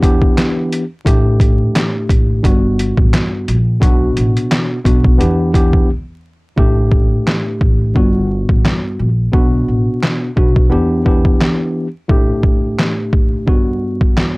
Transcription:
Already playing: upright bass E2
0.02 tine electric piano E3 B3 D4 G4, kick, closed hi-hat
0.22 kick
0.38 snare, clap, closed hi-hat
0.73 closed hi-hat
1.05 upright bass A1, tine electric piano A2 A3 D4 G4, kick, closed hi-hat
1.40 kick, closed hi-hat
1.75 snare, clap, closed hi-hat
2.09 upright bass A1, kick, closed hi-hat
2.43 upright bass G1, tine electric piano G2 G3 B3 F#4, kick, closed hi-hat
2.79 closed hi-hat
2.97 upright bass A1, kick
3.13 snare, clap, closed hi-hat
3.48 upright bass A#1, closed hi-hat
3.80 upright bass B1, tine electric piano B2 B3 D4 F#4, kick, closed hi-hat
4.17 upright bass A1, closed hi-hat
4.37 closed hi-hat
4.51 snare, clap, closed hi-hat
4.84 upright bass B1, tine electric piano B2 B3 D4 F#4, kick, closed hi-hat
5.04 kick
5.18 upright bass E2, tine electric piano E3 B3 D4 G4, closed hi-hat
5.53 tine electric piano E3 B3 D4 G4, kick, closed hi-hat
5.73 kick
6.56 upright bass A1, tine electric piano A2 A3 D4 G4, kick
6.92 kick
7.28 snare, clap
7.61 upright bass A1, kick
7.94 upright bass G1, tine electric piano G2 G3 B3 F#4, kick
8.49 upright bass A1, kick
8.65 snare, clap
8.99 upright bass A#1
9.32 upright bass B1, tine electric piano B2 B3 D4 F#4, kick
9.68 upright bass A1
10.03 snare, clap
10.36 upright bass B1, tine electric piano B2 B3 D4 F#4, kick
10.56 kick
10.69 upright bass E2, tine electric piano E3 B3 D4 G4
11.05 tine electric piano E3 B3 D4 G4, kick
11.25 kick
11.41 snare, clap
12.08 tine electric piano A2 A3 D4 G4, kick
12.43 kick
12.79 snare, clap
13.13 kick
13.46 tine electric piano G2 G3 B3 F#4, kick
14.01 kick
14.17 snare, clap

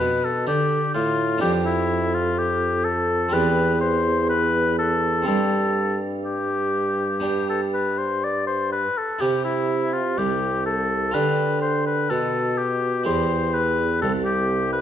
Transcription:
Already playing: harpsichord D4 F4, oboe B4
0.00 bassoon B2, harpsichord B2
0.25 oboe A4
0.47 harpsichord D3, bassoon D3, oboe G4
0.94 harpsichord A2, bassoon A2, oboe F4
1.38 harpsichord B3 D4 G4, oboe G4
1.42 harpsichord F2, bassoon F2
1.65 oboe E4
2.14 oboe F4
2.38 oboe G4
2.84 oboe A4
3.29 bassoon E2, harpsichord C4 E4 G4
3.33 harpsichord E2, oboe B4
3.81 oboe C5
4.29 oboe B4
4.78 oboe A4
5.22 harpsichord C4 E4 G4
5.27 bassoon G2, harpsichord G2, oboe A4
6.25 oboe G4
7.20 harpsichord B3 D4 G4
7.49 oboe A4
7.74 oboe B4
7.98 oboe C5
8.24 oboe D5
8.47 oboe C5
8.72 oboe B4
8.98 oboe A4
9.19 bassoon C3, harpsichord C3 E4 G4, oboe G4
9.44 oboe E4
9.93 oboe F4
10.18 harpsichord C2, bassoon C2, oboe G4
10.65 oboe A4
11.11 bassoon D3, harpsichord D3 F4 G4, oboe B4
11.61 oboe C5
11.86 oboe B4
12.10 harpsichord B2, bassoon B2, oboe A4
12.58 oboe G4
13.04 harpsichord E2 E4 G4, bassoon E2, oboe C5
13.54 oboe B4
14.02 harpsichord C2, bassoon C2, oboe A4
14.25 oboe G4
14.73 oboe B4

